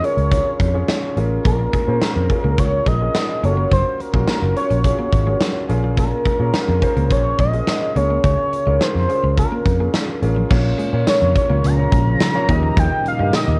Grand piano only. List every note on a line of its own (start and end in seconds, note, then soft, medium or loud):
0.00 1.47 C#3 medium
0.00 0.03 C#4 medium
0.00 0.24 C#4 medium
0.00 0.03 F4 medium
0.00 0.24 F4 medium
0.00 0.03 G#4 medium
0.00 0.24 G#4 medium
0.00 0.04 A#4 medium
0.00 0.32 C#5 medium
0.04 0.25 A#4 medium
0.31 0.63 C#4 medium
0.31 0.63 F4 medium
0.31 0.63 G#4 medium
0.31 0.64 C#5 medium
0.74 1.05 C#4 medium
0.74 1.05 F4 medium
0.74 1.06 G#4 medium
0.74 1.06 C#5 medium
0.89 1.41 C#6 medium
1.16 1.38 C#4 medium
1.16 1.38 F4 medium
1.16 1.38 G#4 medium
1.16 1.38 A#4 medium
1.45 2.26 A#2 medium
1.45 1.76 C#4 medium
1.45 1.76 F4 medium
1.45 1.77 G#4 medium
1.45 1.77 A#4 medium
1.87 2.19 C#4 medium
1.87 2.19 F4 medium
1.87 2.19 G#4 medium
1.87 2.19 C5 medium
2.29 2.51 C#4 medium
2.29 2.51 F4 medium
2.29 2.51 G#4 medium
2.29 2.51 A#4 medium
2.59 2.90 C#4 medium
2.59 2.90 F4 medium
2.59 2.90 G#4 medium
2.59 2.90 A#4 medium
3.01 3.32 C#4 medium
3.01 3.32 F4 medium
3.01 3.33 G#4 medium
3.01 3.33 A#4 medium
3.44 4.00 C#4 medium
3.44 4.00 F4 medium
3.44 4.00 F#4 medium
3.44 3.50 A4 medium
3.51 4.04 A#4 medium
4.14 4.45 C#4 medium
4.14 4.45 F4 medium
4.14 4.46 F#4 medium
4.14 4.46 A#4 medium
4.56 4.77 C#4 medium
4.56 4.77 F4 medium
4.56 4.77 F#4 medium
4.56 4.78 A#4 medium
4.84 5.16 C#4 medium
4.84 5.16 F4 medium
4.84 5.16 F#4 medium
4.84 5.16 G#4 medium
5.27 5.58 C#4 medium
5.27 5.59 F4 medium
5.27 5.59 F#4 medium
5.27 5.59 A#4 medium
5.69 6.50 A#2 medium
5.69 6.26 C#4 medium
5.69 6.26 F4 medium
5.69 6.26 G#4 medium
5.69 6.26 A#4 medium
6.39 6.71 C#4 medium
6.39 6.71 F4 medium
6.39 6.71 G#4 medium
6.39 6.72 C#5 medium
6.82 7.03 C#4 medium
6.82 7.03 F4 medium
6.82 7.04 G#4 medium
6.82 7.04 C5 medium
7.10 7.42 C#4 medium
7.10 7.42 F4 medium
7.10 7.43 G#4 medium
7.10 7.43 A#4 medium
7.53 7.85 C#4 medium
7.53 7.85 F4 medium
7.53 7.85 G#4 medium
7.53 7.85 A#4 medium
7.96 8.77 C#3 medium
7.96 8.53 C#4 medium
7.96 8.53 F4 medium
7.96 8.53 G#4 medium
7.96 8.53 A#4 medium
8.66 8.98 C#4 medium
8.66 8.98 F4 medium
8.66 8.98 G#4 medium
8.66 8.99 A#4 medium
9.09 9.30 C#4 medium
9.09 9.30 F4 medium
9.09 9.30 G#4 medium
9.09 9.30 A#4 medium
9.37 9.69 C#4 medium
9.37 9.69 F4 medium
9.37 9.69 G#4 medium
9.37 9.69 A#4 medium
9.79 10.11 C#4 medium
9.79 10.11 F4 medium
9.79 10.11 G#4 medium
9.79 10.12 A#4 medium
10.22 10.43 C#4 medium
10.22 10.43 F4 medium
10.22 10.44 G#4 medium
10.22 10.44 A#4 medium
10.51 11.32 A#2 medium
10.51 10.82 C#4 medium
10.51 10.82 F4 medium
10.51 10.82 A#4 medium
10.51 10.83 C#5 medium
10.93 11.35 C#4 medium
10.93 11.35 F4 medium
10.93 11.35 A#4 medium
10.93 11.35 C#5 medium
11.50 11.71 C#4 medium
11.50 11.71 F4 medium
11.50 11.71 A#4 medium
11.50 11.71 C#5 medium
11.78 12.20 C#4 medium
11.78 12.20 F4 medium
11.78 12.20 A#4 medium
11.78 12.20 C#5 medium
12.35 12.49 C#4 medium
12.35 12.49 F4 medium
12.35 12.48 A#4 medium
12.35 12.49 C#5 loud
12.49 13.30 D#3 medium
12.49 13.05 D#4 medium
12.49 13.05 G4 medium
12.49 13.06 A#4 medium
12.49 13.06 D#5 loud
13.19 13.60 D#4 medium
13.19 13.60 G4 medium
13.19 13.60 A#4 medium
13.19 13.60 D#5 medium